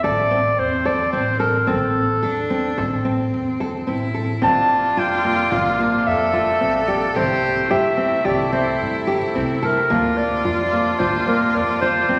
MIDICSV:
0, 0, Header, 1, 7, 480
1, 0, Start_track
1, 0, Tempo, 548446
1, 1468, Time_signature, 5, 2, 24, 8
1, 10672, End_track
2, 0, Start_track
2, 0, Title_t, "Clarinet"
2, 0, Program_c, 0, 71
2, 25, Note_on_c, 0, 74, 86
2, 514, Note_on_c, 0, 72, 81
2, 527, Note_off_c, 0, 74, 0
2, 750, Note_on_c, 0, 74, 80
2, 763, Note_off_c, 0, 72, 0
2, 979, Note_off_c, 0, 74, 0
2, 984, Note_on_c, 0, 72, 78
2, 1209, Note_off_c, 0, 72, 0
2, 1214, Note_on_c, 0, 70, 73
2, 1469, Note_on_c, 0, 69, 82
2, 1482, Note_off_c, 0, 70, 0
2, 2907, Note_off_c, 0, 69, 0
2, 3881, Note_on_c, 0, 81, 103
2, 4363, Note_on_c, 0, 79, 87
2, 4376, Note_off_c, 0, 81, 0
2, 4760, Note_off_c, 0, 79, 0
2, 4760, Note_on_c, 0, 79, 56
2, 4826, Note_on_c, 0, 77, 88
2, 4839, Note_off_c, 0, 79, 0
2, 5307, Note_on_c, 0, 76, 76
2, 5320, Note_off_c, 0, 77, 0
2, 6025, Note_on_c, 0, 74, 68
2, 6038, Note_off_c, 0, 76, 0
2, 6266, Note_off_c, 0, 74, 0
2, 6276, Note_on_c, 0, 72, 92
2, 6746, Note_on_c, 0, 76, 84
2, 6759, Note_off_c, 0, 72, 0
2, 7222, Note_on_c, 0, 74, 75
2, 7235, Note_off_c, 0, 76, 0
2, 7455, Note_off_c, 0, 74, 0
2, 7460, Note_on_c, 0, 72, 69
2, 7910, Note_off_c, 0, 72, 0
2, 8436, Note_on_c, 0, 70, 76
2, 8901, Note_on_c, 0, 74, 84
2, 8914, Note_off_c, 0, 70, 0
2, 9619, Note_on_c, 0, 72, 85
2, 9632, Note_off_c, 0, 74, 0
2, 9864, Note_off_c, 0, 72, 0
2, 9870, Note_on_c, 0, 70, 76
2, 10110, Note_on_c, 0, 74, 81
2, 10123, Note_off_c, 0, 70, 0
2, 10336, Note_off_c, 0, 74, 0
2, 10342, Note_on_c, 0, 72, 86
2, 10672, Note_off_c, 0, 72, 0
2, 10672, End_track
3, 0, Start_track
3, 0, Title_t, "Cello"
3, 0, Program_c, 1, 42
3, 0, Note_on_c, 1, 60, 77
3, 1911, Note_off_c, 1, 60, 0
3, 1959, Note_on_c, 1, 62, 71
3, 2436, Note_on_c, 1, 60, 80
3, 2450, Note_off_c, 1, 62, 0
3, 3396, Note_on_c, 1, 64, 77
3, 3409, Note_off_c, 1, 60, 0
3, 3866, Note_on_c, 1, 65, 93
3, 3879, Note_off_c, 1, 64, 0
3, 5306, Note_off_c, 1, 65, 0
3, 5313, Note_on_c, 1, 69, 92
3, 6257, Note_on_c, 1, 67, 99
3, 6270, Note_off_c, 1, 69, 0
3, 6736, Note_on_c, 1, 64, 85
3, 6749, Note_off_c, 1, 67, 0
3, 8660, Note_on_c, 1, 65, 88
3, 8673, Note_off_c, 1, 64, 0
3, 10672, Note_off_c, 1, 65, 0
3, 10672, End_track
4, 0, Start_track
4, 0, Title_t, "Nylon-string guitar"
4, 0, Program_c, 2, 24
4, 34, Note_on_c, 2, 69, 76
4, 179, Note_off_c, 2, 69, 0
4, 270, Note_on_c, 2, 60, 73
4, 562, Note_off_c, 2, 60, 0
4, 746, Note_on_c, 2, 69, 67
4, 893, Note_off_c, 2, 69, 0
4, 988, Note_on_c, 2, 60, 72
4, 1134, Note_off_c, 2, 60, 0
4, 1222, Note_on_c, 2, 69, 64
4, 1370, Note_off_c, 2, 69, 0
4, 1461, Note_on_c, 2, 60, 76
4, 1755, Note_off_c, 2, 60, 0
4, 1948, Note_on_c, 2, 69, 71
4, 2094, Note_off_c, 2, 69, 0
4, 2190, Note_on_c, 2, 60, 71
4, 2335, Note_off_c, 2, 60, 0
4, 2430, Note_on_c, 2, 69, 71
4, 2575, Note_off_c, 2, 69, 0
4, 2667, Note_on_c, 2, 60, 68
4, 2959, Note_off_c, 2, 60, 0
4, 3154, Note_on_c, 2, 69, 64
4, 3298, Note_off_c, 2, 69, 0
4, 3386, Note_on_c, 2, 60, 63
4, 3532, Note_off_c, 2, 60, 0
4, 3626, Note_on_c, 2, 69, 62
4, 3772, Note_off_c, 2, 69, 0
4, 3866, Note_on_c, 2, 60, 74
4, 4159, Note_off_c, 2, 60, 0
4, 4350, Note_on_c, 2, 65, 79
4, 4495, Note_off_c, 2, 65, 0
4, 4588, Note_on_c, 2, 58, 62
4, 4734, Note_off_c, 2, 58, 0
4, 4826, Note_on_c, 2, 65, 73
4, 4973, Note_off_c, 2, 65, 0
4, 5066, Note_on_c, 2, 58, 70
4, 5359, Note_off_c, 2, 58, 0
4, 5543, Note_on_c, 2, 65, 64
4, 5691, Note_off_c, 2, 65, 0
4, 5783, Note_on_c, 2, 60, 67
4, 5930, Note_off_c, 2, 60, 0
4, 6021, Note_on_c, 2, 67, 63
4, 6169, Note_off_c, 2, 67, 0
4, 6263, Note_on_c, 2, 60, 77
4, 6557, Note_off_c, 2, 60, 0
4, 6743, Note_on_c, 2, 67, 75
4, 6891, Note_off_c, 2, 67, 0
4, 6977, Note_on_c, 2, 60, 71
4, 7126, Note_off_c, 2, 60, 0
4, 7219, Note_on_c, 2, 67, 75
4, 7368, Note_off_c, 2, 67, 0
4, 7460, Note_on_c, 2, 60, 69
4, 7755, Note_off_c, 2, 60, 0
4, 7940, Note_on_c, 2, 67, 71
4, 8089, Note_off_c, 2, 67, 0
4, 8184, Note_on_c, 2, 60, 69
4, 8332, Note_off_c, 2, 60, 0
4, 8424, Note_on_c, 2, 69, 70
4, 8571, Note_off_c, 2, 69, 0
4, 8664, Note_on_c, 2, 58, 86
4, 8958, Note_off_c, 2, 58, 0
4, 9144, Note_on_c, 2, 65, 74
4, 9292, Note_off_c, 2, 65, 0
4, 9385, Note_on_c, 2, 58, 65
4, 9532, Note_off_c, 2, 58, 0
4, 9624, Note_on_c, 2, 65, 72
4, 9771, Note_off_c, 2, 65, 0
4, 9866, Note_on_c, 2, 58, 73
4, 10159, Note_off_c, 2, 58, 0
4, 10346, Note_on_c, 2, 65, 74
4, 10493, Note_off_c, 2, 65, 0
4, 10580, Note_on_c, 2, 60, 66
4, 10672, Note_off_c, 2, 60, 0
4, 10672, End_track
5, 0, Start_track
5, 0, Title_t, "Harmonium"
5, 0, Program_c, 3, 20
5, 3872, Note_on_c, 3, 62, 81
5, 3874, Note_on_c, 3, 48, 66
5, 3880, Note_on_c, 3, 58, 60
5, 6246, Note_off_c, 3, 62, 0
5, 6247, Note_on_c, 3, 57, 62
5, 6248, Note_on_c, 3, 64, 83
5, 6250, Note_off_c, 3, 58, 0
5, 8634, Note_off_c, 3, 57, 0
5, 8635, Note_off_c, 3, 64, 0
5, 8669, Note_on_c, 3, 58, 67
5, 8669, Note_on_c, 3, 62, 79
5, 10672, Note_off_c, 3, 48, 0
5, 10672, Note_off_c, 3, 58, 0
5, 10672, Note_off_c, 3, 62, 0
5, 10672, End_track
6, 0, Start_track
6, 0, Title_t, "Upright bass"
6, 0, Program_c, 4, 32
6, 35, Note_on_c, 4, 33, 88
6, 451, Note_off_c, 4, 33, 0
6, 513, Note_on_c, 4, 40, 85
6, 929, Note_off_c, 4, 40, 0
6, 999, Note_on_c, 4, 33, 90
6, 1412, Note_off_c, 4, 33, 0
6, 1474, Note_on_c, 4, 33, 89
6, 1889, Note_off_c, 4, 33, 0
6, 1960, Note_on_c, 4, 40, 76
6, 2373, Note_off_c, 4, 40, 0
6, 2437, Note_on_c, 4, 33, 91
6, 2851, Note_off_c, 4, 33, 0
6, 2922, Note_on_c, 4, 40, 91
6, 3334, Note_off_c, 4, 40, 0
6, 3394, Note_on_c, 4, 33, 85
6, 3809, Note_off_c, 4, 33, 0
6, 3879, Note_on_c, 4, 34, 101
6, 4292, Note_off_c, 4, 34, 0
6, 4354, Note_on_c, 4, 41, 84
6, 4769, Note_off_c, 4, 41, 0
6, 4838, Note_on_c, 4, 34, 88
6, 5252, Note_off_c, 4, 34, 0
6, 5311, Note_on_c, 4, 41, 89
6, 5728, Note_off_c, 4, 41, 0
6, 5787, Note_on_c, 4, 34, 84
6, 6206, Note_off_c, 4, 34, 0
6, 6267, Note_on_c, 4, 36, 99
6, 6686, Note_off_c, 4, 36, 0
6, 6752, Note_on_c, 4, 43, 75
6, 7169, Note_off_c, 4, 43, 0
6, 7233, Note_on_c, 4, 36, 88
6, 7649, Note_off_c, 4, 36, 0
6, 7713, Note_on_c, 4, 43, 96
6, 8130, Note_off_c, 4, 43, 0
6, 8191, Note_on_c, 4, 36, 97
6, 8608, Note_off_c, 4, 36, 0
6, 8670, Note_on_c, 4, 38, 103
6, 9088, Note_off_c, 4, 38, 0
6, 9144, Note_on_c, 4, 41, 84
6, 9565, Note_off_c, 4, 41, 0
6, 9630, Note_on_c, 4, 38, 88
6, 10048, Note_off_c, 4, 38, 0
6, 10109, Note_on_c, 4, 41, 89
6, 10527, Note_off_c, 4, 41, 0
6, 10592, Note_on_c, 4, 38, 91
6, 10672, Note_off_c, 4, 38, 0
6, 10672, End_track
7, 0, Start_track
7, 0, Title_t, "Frame drum"
7, 33, Note_on_c, 9, 64, 51
7, 120, Note_off_c, 9, 64, 0
7, 514, Note_on_c, 9, 64, 18
7, 601, Note_off_c, 9, 64, 0
7, 750, Note_on_c, 9, 64, 43
7, 837, Note_off_c, 9, 64, 0
7, 1475, Note_on_c, 9, 64, 49
7, 1563, Note_off_c, 9, 64, 0
7, 1712, Note_on_c, 9, 64, 18
7, 1799, Note_off_c, 9, 64, 0
7, 1953, Note_on_c, 9, 64, 18
7, 2041, Note_off_c, 9, 64, 0
7, 2193, Note_on_c, 9, 64, 18
7, 2280, Note_off_c, 9, 64, 0
7, 2430, Note_on_c, 9, 64, 54
7, 2518, Note_off_c, 9, 64, 0
7, 3152, Note_on_c, 9, 64, 47
7, 3240, Note_off_c, 9, 64, 0
7, 3396, Note_on_c, 9, 64, 18
7, 3483, Note_off_c, 9, 64, 0
7, 3866, Note_on_c, 9, 64, 53
7, 3953, Note_off_c, 9, 64, 0
7, 4830, Note_on_c, 9, 64, 61
7, 4918, Note_off_c, 9, 64, 0
7, 5307, Note_on_c, 9, 64, 21
7, 5394, Note_off_c, 9, 64, 0
7, 5545, Note_on_c, 9, 64, 46
7, 5633, Note_off_c, 9, 64, 0
7, 6264, Note_on_c, 9, 64, 60
7, 6351, Note_off_c, 9, 64, 0
7, 7227, Note_on_c, 9, 64, 60
7, 7315, Note_off_c, 9, 64, 0
7, 7707, Note_on_c, 9, 64, 19
7, 7794, Note_off_c, 9, 64, 0
7, 7949, Note_on_c, 9, 64, 47
7, 8037, Note_off_c, 9, 64, 0
7, 8664, Note_on_c, 9, 64, 53
7, 8751, Note_off_c, 9, 64, 0
7, 9635, Note_on_c, 9, 64, 57
7, 9722, Note_off_c, 9, 64, 0
7, 10103, Note_on_c, 9, 64, 19
7, 10190, Note_off_c, 9, 64, 0
7, 10349, Note_on_c, 9, 64, 50
7, 10436, Note_off_c, 9, 64, 0
7, 10672, End_track
0, 0, End_of_file